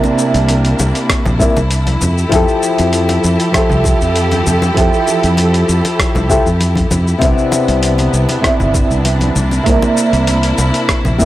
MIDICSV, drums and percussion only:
0, 0, Header, 1, 2, 480
1, 0, Start_track
1, 0, Key_signature, 0, "major"
1, 0, Tempo, 612245
1, 1820, Time_signature, 4, 2, 24, 8
1, 8820, End_track
2, 0, Start_track
2, 0, Title_t, "Drums"
2, 28, Note_on_c, 9, 62, 67
2, 34, Note_on_c, 9, 82, 24
2, 107, Note_off_c, 9, 62, 0
2, 112, Note_off_c, 9, 82, 0
2, 146, Note_on_c, 9, 82, 83
2, 224, Note_off_c, 9, 82, 0
2, 269, Note_on_c, 9, 42, 33
2, 272, Note_on_c, 9, 82, 35
2, 348, Note_off_c, 9, 42, 0
2, 351, Note_off_c, 9, 82, 0
2, 380, Note_on_c, 9, 42, 72
2, 383, Note_on_c, 9, 82, 45
2, 386, Note_on_c, 9, 62, 57
2, 459, Note_off_c, 9, 42, 0
2, 462, Note_off_c, 9, 82, 0
2, 464, Note_off_c, 9, 62, 0
2, 507, Note_on_c, 9, 42, 45
2, 510, Note_on_c, 9, 82, 23
2, 585, Note_off_c, 9, 42, 0
2, 588, Note_off_c, 9, 82, 0
2, 621, Note_on_c, 9, 82, 71
2, 625, Note_on_c, 9, 62, 89
2, 699, Note_off_c, 9, 82, 0
2, 703, Note_off_c, 9, 62, 0
2, 746, Note_on_c, 9, 42, 46
2, 749, Note_on_c, 9, 82, 36
2, 825, Note_off_c, 9, 42, 0
2, 828, Note_off_c, 9, 82, 0
2, 859, Note_on_c, 9, 37, 82
2, 859, Note_on_c, 9, 42, 66
2, 861, Note_on_c, 9, 36, 101
2, 862, Note_on_c, 9, 82, 44
2, 937, Note_off_c, 9, 37, 0
2, 937, Note_off_c, 9, 42, 0
2, 940, Note_off_c, 9, 36, 0
2, 940, Note_off_c, 9, 82, 0
2, 984, Note_on_c, 9, 64, 97
2, 988, Note_on_c, 9, 62, 53
2, 991, Note_on_c, 9, 82, 23
2, 1062, Note_off_c, 9, 64, 0
2, 1066, Note_off_c, 9, 62, 0
2, 1069, Note_off_c, 9, 82, 0
2, 1101, Note_on_c, 9, 36, 106
2, 1102, Note_on_c, 9, 82, 76
2, 1179, Note_off_c, 9, 36, 0
2, 1181, Note_off_c, 9, 82, 0
2, 1228, Note_on_c, 9, 62, 85
2, 1229, Note_on_c, 9, 82, 37
2, 1306, Note_off_c, 9, 62, 0
2, 1307, Note_off_c, 9, 82, 0
2, 1337, Note_on_c, 9, 42, 65
2, 1340, Note_on_c, 9, 82, 45
2, 1416, Note_off_c, 9, 42, 0
2, 1419, Note_off_c, 9, 82, 0
2, 1463, Note_on_c, 9, 63, 81
2, 1464, Note_on_c, 9, 42, 29
2, 1467, Note_on_c, 9, 82, 23
2, 1541, Note_off_c, 9, 63, 0
2, 1543, Note_off_c, 9, 42, 0
2, 1546, Note_off_c, 9, 82, 0
2, 1578, Note_on_c, 9, 64, 76
2, 1580, Note_on_c, 9, 62, 50
2, 1580, Note_on_c, 9, 82, 82
2, 1581, Note_on_c, 9, 63, 65
2, 1657, Note_off_c, 9, 64, 0
2, 1658, Note_off_c, 9, 62, 0
2, 1658, Note_off_c, 9, 82, 0
2, 1660, Note_off_c, 9, 63, 0
2, 1709, Note_on_c, 9, 82, 36
2, 1787, Note_off_c, 9, 82, 0
2, 1818, Note_on_c, 9, 42, 68
2, 1820, Note_on_c, 9, 36, 120
2, 1821, Note_on_c, 9, 82, 50
2, 1822, Note_on_c, 9, 62, 76
2, 1897, Note_off_c, 9, 42, 0
2, 1899, Note_off_c, 9, 36, 0
2, 1900, Note_off_c, 9, 62, 0
2, 1900, Note_off_c, 9, 82, 0
2, 1946, Note_on_c, 9, 82, 25
2, 2025, Note_off_c, 9, 82, 0
2, 2060, Note_on_c, 9, 82, 80
2, 2139, Note_off_c, 9, 82, 0
2, 2183, Note_on_c, 9, 42, 32
2, 2186, Note_on_c, 9, 82, 39
2, 2189, Note_on_c, 9, 62, 54
2, 2261, Note_off_c, 9, 42, 0
2, 2264, Note_off_c, 9, 82, 0
2, 2268, Note_off_c, 9, 62, 0
2, 2295, Note_on_c, 9, 42, 65
2, 2298, Note_on_c, 9, 82, 48
2, 2374, Note_off_c, 9, 42, 0
2, 2377, Note_off_c, 9, 82, 0
2, 2422, Note_on_c, 9, 62, 69
2, 2425, Note_on_c, 9, 42, 45
2, 2428, Note_on_c, 9, 82, 25
2, 2501, Note_off_c, 9, 62, 0
2, 2503, Note_off_c, 9, 42, 0
2, 2506, Note_off_c, 9, 82, 0
2, 2540, Note_on_c, 9, 82, 77
2, 2619, Note_off_c, 9, 82, 0
2, 2664, Note_on_c, 9, 42, 42
2, 2667, Note_on_c, 9, 82, 34
2, 2742, Note_off_c, 9, 42, 0
2, 2745, Note_off_c, 9, 82, 0
2, 2778, Note_on_c, 9, 37, 74
2, 2778, Note_on_c, 9, 42, 63
2, 2780, Note_on_c, 9, 36, 107
2, 2781, Note_on_c, 9, 62, 52
2, 2781, Note_on_c, 9, 82, 45
2, 2856, Note_off_c, 9, 37, 0
2, 2856, Note_off_c, 9, 42, 0
2, 2859, Note_off_c, 9, 36, 0
2, 2859, Note_off_c, 9, 62, 0
2, 2859, Note_off_c, 9, 82, 0
2, 2898, Note_on_c, 9, 64, 92
2, 2910, Note_on_c, 9, 82, 23
2, 2976, Note_off_c, 9, 64, 0
2, 2988, Note_off_c, 9, 82, 0
2, 3011, Note_on_c, 9, 62, 67
2, 3020, Note_on_c, 9, 36, 106
2, 3022, Note_on_c, 9, 82, 81
2, 3089, Note_off_c, 9, 62, 0
2, 3099, Note_off_c, 9, 36, 0
2, 3101, Note_off_c, 9, 82, 0
2, 3147, Note_on_c, 9, 82, 37
2, 3225, Note_off_c, 9, 82, 0
2, 3258, Note_on_c, 9, 42, 62
2, 3261, Note_on_c, 9, 82, 44
2, 3337, Note_off_c, 9, 42, 0
2, 3340, Note_off_c, 9, 82, 0
2, 3381, Note_on_c, 9, 62, 54
2, 3384, Note_on_c, 9, 42, 30
2, 3387, Note_on_c, 9, 82, 25
2, 3389, Note_on_c, 9, 63, 78
2, 3460, Note_off_c, 9, 62, 0
2, 3463, Note_off_c, 9, 42, 0
2, 3466, Note_off_c, 9, 82, 0
2, 3467, Note_off_c, 9, 63, 0
2, 3496, Note_on_c, 9, 63, 61
2, 3502, Note_on_c, 9, 82, 82
2, 3504, Note_on_c, 9, 64, 80
2, 3574, Note_off_c, 9, 63, 0
2, 3581, Note_off_c, 9, 82, 0
2, 3582, Note_off_c, 9, 64, 0
2, 3622, Note_on_c, 9, 62, 81
2, 3628, Note_on_c, 9, 82, 35
2, 3701, Note_off_c, 9, 62, 0
2, 3707, Note_off_c, 9, 82, 0
2, 3741, Note_on_c, 9, 36, 118
2, 3741, Note_on_c, 9, 42, 63
2, 3744, Note_on_c, 9, 82, 44
2, 3819, Note_off_c, 9, 36, 0
2, 3819, Note_off_c, 9, 42, 0
2, 3822, Note_off_c, 9, 82, 0
2, 3868, Note_on_c, 9, 82, 23
2, 3947, Note_off_c, 9, 82, 0
2, 3979, Note_on_c, 9, 62, 48
2, 3979, Note_on_c, 9, 82, 79
2, 4058, Note_off_c, 9, 62, 0
2, 4058, Note_off_c, 9, 82, 0
2, 4104, Note_on_c, 9, 42, 31
2, 4107, Note_on_c, 9, 82, 38
2, 4182, Note_off_c, 9, 42, 0
2, 4185, Note_off_c, 9, 82, 0
2, 4213, Note_on_c, 9, 62, 77
2, 4217, Note_on_c, 9, 42, 63
2, 4220, Note_on_c, 9, 82, 48
2, 4291, Note_off_c, 9, 62, 0
2, 4296, Note_off_c, 9, 42, 0
2, 4299, Note_off_c, 9, 82, 0
2, 4344, Note_on_c, 9, 42, 43
2, 4347, Note_on_c, 9, 82, 22
2, 4423, Note_off_c, 9, 42, 0
2, 4426, Note_off_c, 9, 82, 0
2, 4461, Note_on_c, 9, 82, 79
2, 4539, Note_off_c, 9, 82, 0
2, 4585, Note_on_c, 9, 42, 41
2, 4585, Note_on_c, 9, 62, 54
2, 4588, Note_on_c, 9, 82, 37
2, 4663, Note_off_c, 9, 42, 0
2, 4663, Note_off_c, 9, 62, 0
2, 4666, Note_off_c, 9, 82, 0
2, 4699, Note_on_c, 9, 36, 112
2, 4700, Note_on_c, 9, 37, 77
2, 4700, Note_on_c, 9, 42, 62
2, 4703, Note_on_c, 9, 82, 45
2, 4778, Note_off_c, 9, 36, 0
2, 4779, Note_off_c, 9, 37, 0
2, 4779, Note_off_c, 9, 42, 0
2, 4782, Note_off_c, 9, 82, 0
2, 4821, Note_on_c, 9, 64, 90
2, 4828, Note_on_c, 9, 62, 69
2, 4829, Note_on_c, 9, 82, 23
2, 4899, Note_off_c, 9, 64, 0
2, 4906, Note_off_c, 9, 62, 0
2, 4908, Note_off_c, 9, 82, 0
2, 4939, Note_on_c, 9, 36, 108
2, 4941, Note_on_c, 9, 82, 83
2, 5018, Note_off_c, 9, 36, 0
2, 5020, Note_off_c, 9, 82, 0
2, 5070, Note_on_c, 9, 82, 38
2, 5149, Note_off_c, 9, 82, 0
2, 5179, Note_on_c, 9, 42, 63
2, 5179, Note_on_c, 9, 62, 50
2, 5182, Note_on_c, 9, 82, 48
2, 5257, Note_off_c, 9, 62, 0
2, 5258, Note_off_c, 9, 42, 0
2, 5261, Note_off_c, 9, 82, 0
2, 5295, Note_on_c, 9, 63, 84
2, 5305, Note_on_c, 9, 36, 60
2, 5308, Note_on_c, 9, 42, 31
2, 5311, Note_on_c, 9, 82, 23
2, 5374, Note_off_c, 9, 63, 0
2, 5384, Note_off_c, 9, 36, 0
2, 5386, Note_off_c, 9, 42, 0
2, 5389, Note_off_c, 9, 82, 0
2, 5417, Note_on_c, 9, 62, 77
2, 5417, Note_on_c, 9, 63, 70
2, 5419, Note_on_c, 9, 82, 78
2, 5422, Note_on_c, 9, 64, 81
2, 5495, Note_off_c, 9, 62, 0
2, 5495, Note_off_c, 9, 63, 0
2, 5498, Note_off_c, 9, 82, 0
2, 5501, Note_off_c, 9, 64, 0
2, 5547, Note_on_c, 9, 82, 35
2, 5626, Note_off_c, 9, 82, 0
2, 5653, Note_on_c, 9, 62, 54
2, 5658, Note_on_c, 9, 42, 64
2, 5659, Note_on_c, 9, 36, 114
2, 5661, Note_on_c, 9, 82, 47
2, 5732, Note_off_c, 9, 62, 0
2, 5736, Note_off_c, 9, 42, 0
2, 5737, Note_off_c, 9, 36, 0
2, 5739, Note_off_c, 9, 82, 0
2, 5789, Note_on_c, 9, 82, 23
2, 5867, Note_off_c, 9, 82, 0
2, 5895, Note_on_c, 9, 62, 85
2, 5899, Note_on_c, 9, 82, 81
2, 5973, Note_off_c, 9, 62, 0
2, 5978, Note_off_c, 9, 82, 0
2, 6024, Note_on_c, 9, 42, 31
2, 6027, Note_on_c, 9, 82, 33
2, 6102, Note_off_c, 9, 42, 0
2, 6105, Note_off_c, 9, 82, 0
2, 6136, Note_on_c, 9, 42, 66
2, 6139, Note_on_c, 9, 82, 46
2, 6215, Note_off_c, 9, 42, 0
2, 6218, Note_off_c, 9, 82, 0
2, 6258, Note_on_c, 9, 62, 52
2, 6263, Note_on_c, 9, 42, 44
2, 6266, Note_on_c, 9, 82, 24
2, 6337, Note_off_c, 9, 62, 0
2, 6342, Note_off_c, 9, 42, 0
2, 6345, Note_off_c, 9, 82, 0
2, 6379, Note_on_c, 9, 82, 75
2, 6458, Note_off_c, 9, 82, 0
2, 6497, Note_on_c, 9, 62, 71
2, 6501, Note_on_c, 9, 42, 42
2, 6504, Note_on_c, 9, 82, 32
2, 6576, Note_off_c, 9, 62, 0
2, 6580, Note_off_c, 9, 42, 0
2, 6583, Note_off_c, 9, 82, 0
2, 6617, Note_on_c, 9, 36, 97
2, 6618, Note_on_c, 9, 37, 69
2, 6618, Note_on_c, 9, 42, 60
2, 6621, Note_on_c, 9, 82, 44
2, 6696, Note_off_c, 9, 36, 0
2, 6697, Note_off_c, 9, 37, 0
2, 6697, Note_off_c, 9, 42, 0
2, 6700, Note_off_c, 9, 82, 0
2, 6742, Note_on_c, 9, 64, 91
2, 6746, Note_on_c, 9, 82, 22
2, 6820, Note_off_c, 9, 64, 0
2, 6824, Note_off_c, 9, 82, 0
2, 6853, Note_on_c, 9, 62, 54
2, 6857, Note_on_c, 9, 82, 76
2, 6858, Note_on_c, 9, 36, 106
2, 6932, Note_off_c, 9, 62, 0
2, 6936, Note_off_c, 9, 36, 0
2, 6936, Note_off_c, 9, 82, 0
2, 6985, Note_on_c, 9, 82, 37
2, 7063, Note_off_c, 9, 82, 0
2, 7094, Note_on_c, 9, 62, 72
2, 7095, Note_on_c, 9, 42, 64
2, 7098, Note_on_c, 9, 82, 40
2, 7173, Note_off_c, 9, 42, 0
2, 7173, Note_off_c, 9, 62, 0
2, 7176, Note_off_c, 9, 82, 0
2, 7217, Note_on_c, 9, 63, 83
2, 7221, Note_on_c, 9, 42, 31
2, 7224, Note_on_c, 9, 82, 23
2, 7295, Note_off_c, 9, 63, 0
2, 7299, Note_off_c, 9, 42, 0
2, 7302, Note_off_c, 9, 82, 0
2, 7334, Note_on_c, 9, 63, 64
2, 7338, Note_on_c, 9, 64, 76
2, 7338, Note_on_c, 9, 82, 81
2, 7413, Note_off_c, 9, 63, 0
2, 7416, Note_off_c, 9, 82, 0
2, 7417, Note_off_c, 9, 64, 0
2, 7459, Note_on_c, 9, 62, 60
2, 7464, Note_on_c, 9, 82, 34
2, 7537, Note_off_c, 9, 62, 0
2, 7543, Note_off_c, 9, 82, 0
2, 7575, Note_on_c, 9, 42, 64
2, 7577, Note_on_c, 9, 36, 106
2, 7578, Note_on_c, 9, 82, 43
2, 7654, Note_off_c, 9, 42, 0
2, 7656, Note_off_c, 9, 36, 0
2, 7657, Note_off_c, 9, 82, 0
2, 7702, Note_on_c, 9, 62, 83
2, 7707, Note_on_c, 9, 82, 23
2, 7781, Note_off_c, 9, 62, 0
2, 7786, Note_off_c, 9, 82, 0
2, 7819, Note_on_c, 9, 82, 76
2, 7897, Note_off_c, 9, 82, 0
2, 7944, Note_on_c, 9, 42, 33
2, 7947, Note_on_c, 9, 82, 35
2, 8022, Note_off_c, 9, 42, 0
2, 8025, Note_off_c, 9, 82, 0
2, 8054, Note_on_c, 9, 42, 68
2, 8057, Note_on_c, 9, 82, 45
2, 8058, Note_on_c, 9, 62, 52
2, 8133, Note_off_c, 9, 42, 0
2, 8136, Note_off_c, 9, 62, 0
2, 8136, Note_off_c, 9, 82, 0
2, 8178, Note_on_c, 9, 42, 48
2, 8181, Note_on_c, 9, 82, 22
2, 8257, Note_off_c, 9, 42, 0
2, 8260, Note_off_c, 9, 82, 0
2, 8296, Note_on_c, 9, 82, 70
2, 8298, Note_on_c, 9, 62, 78
2, 8374, Note_off_c, 9, 82, 0
2, 8377, Note_off_c, 9, 62, 0
2, 8421, Note_on_c, 9, 42, 45
2, 8424, Note_on_c, 9, 82, 31
2, 8499, Note_off_c, 9, 42, 0
2, 8502, Note_off_c, 9, 82, 0
2, 8536, Note_on_c, 9, 37, 74
2, 8536, Note_on_c, 9, 42, 65
2, 8538, Note_on_c, 9, 36, 93
2, 8539, Note_on_c, 9, 82, 43
2, 8615, Note_off_c, 9, 37, 0
2, 8615, Note_off_c, 9, 42, 0
2, 8617, Note_off_c, 9, 36, 0
2, 8618, Note_off_c, 9, 82, 0
2, 8662, Note_on_c, 9, 62, 49
2, 8662, Note_on_c, 9, 64, 82
2, 8666, Note_on_c, 9, 82, 22
2, 8740, Note_off_c, 9, 64, 0
2, 8741, Note_off_c, 9, 62, 0
2, 8744, Note_off_c, 9, 82, 0
2, 8779, Note_on_c, 9, 36, 102
2, 8780, Note_on_c, 9, 82, 77
2, 8820, Note_off_c, 9, 36, 0
2, 8820, Note_off_c, 9, 82, 0
2, 8820, End_track
0, 0, End_of_file